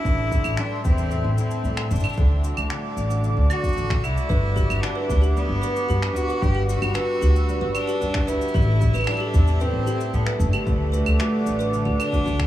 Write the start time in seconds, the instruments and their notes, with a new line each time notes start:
Already playing: harp D3 G3 D4 F#4, cello E4
0.04 upright bass A1, harp A2 A4, analog synth pad A4 E5 G5 C6, kick, shaker
0.31 harp E4, kick, shaker
0.44 upright bass A1, claves, shaker
0.57 harp G3, cello D4, finger snap, shaker
0.85 upright bass E2, harp C4, cello C4, kick, shaker
0.98 shaker
1.11 harp A2, shaker
1.24 upright bass A1
1.38 cello C4, harp E4, shaker
1.51 shaker
1.64 upright bass A2, harp G3, shaker
1.77 finger snap
1.91 upright bass G1, cello D4, shaker
1.95 shaker
2.00 shaker
2.04 claves, shaker
2.09 shaker
2.13 shaker
2.17 upright bass D2, harp D3 A4, analog synth pad D5 F#5 D6, kick, shaker
2.44 harp F#4, shaker
2.57 upright bass D2, claves, shaker
2.70 harp A3, finger snap, shaker
2.96 upright bass A1, harp D4, shaker
3.10 shaker
3.24 harp D3, shaker
3.37 upright bass D2
3.50 cello F#4, harp F#4, claves, shaker
3.63 kick, shaker
3.68 shaker
3.73 upright bass A1, shaker
3.77 harp A3, shaker
3.90 finger snap, kick
4.03 upright bass C2, cello E4, claves, shaker
4.17 shaker
4.29 upright bass G1, harp G3 B4, music box B4, analog synth pad B4 D6, kick, shaker
4.56 harp F#4, music box G4, kick, shaker
4.70 upright bass G1, claves, shaker
4.82 cello D4, harp D4, finger snap, shaker
4.95 music box B4
5.09 upright bass D2, cello D4, harp D4, kick, shaker
5.22 music box G4, shaker
5.36 harp G3, cello B3, shaker
5.49 upright bass G1
5.62 harp F#4, music box B4, shaker
5.76 shaker
5.89 upright bass G2, harp D4, music box G4, shaker
6.02 finger snap
6.16 upright bass D2, cello F#4, shaker
6.28 music box B4, shaker
6.42 upright bass G1, harp G3 B4, cello G4, analog synth pad E6, kick, shaker
6.55 music box G4
6.68 cello F#4, harp F#4, shaker
6.82 upright bass G1, claves, shaker
6.94 harp D4, music box B4, finger snap, shaker
7.21 upright bass D2, harp D4, music box G4, shaker
7.36 shaker
7.48 harp G3, shaker
7.61 upright bass G1, music box B4
7.75 cello D4, harp F#4, claves, shaker
7.88 music box G4, shaker
8.01 upright bass G2, harp D4, shaker
8.14 finger snap, kick
8.27 upright bass D2, cello E4, music box B4, shaker
8.41 shaker
8.48 shaker
8.54 upright bass A1, harp A2 A4, music box G4, analog synth pad A4 E5, kick, shaker
8.62 shaker
8.81 harp E4, kick, shaker
8.94 upright bass A1, music box B4, claves, shaker
8.98 claves
9.01 claves
9.04 finger snap, claves
9.07 harp G3, cello D4, claves, shaker
9.11 claves
9.14 claves
9.17 music box G4, claves
9.34 upright bass E2, harp C4, kick, shaker
9.47 shaker
9.60 harp A2, cello C4, music box B4, shaker
9.73 upright bass A1
9.86 harp E4, music box G4, shaker
10.00 shaker
10.13 upright bass A2, harp G3, cello B3, shaker
10.26 music box B4, finger snap
10.39 upright bass G1, cello A3, shaker
10.53 music box G4, claves, shaker
10.66 upright bass D2, harp D3 A4, analog synth pad D5 F#5 D6, kick, shaker
10.92 harp F#4, music box B4, shaker
11.06 upright bass D2, claves, shaker
11.19 harp A3, music box F#4, finger snap, shaker
11.46 upright bass A1, harp D4, shaker
11.59 music box B4, shaker
11.73 harp D3, shaker
11.85 upright bass D2, music box F#4
11.99 cello D4, harp F#4, claves, shaker
12.12 music box F#4, kick, shaker
12.26 upright bass D2, harp A3, music box F#4, shaker
12.39 finger snap, kick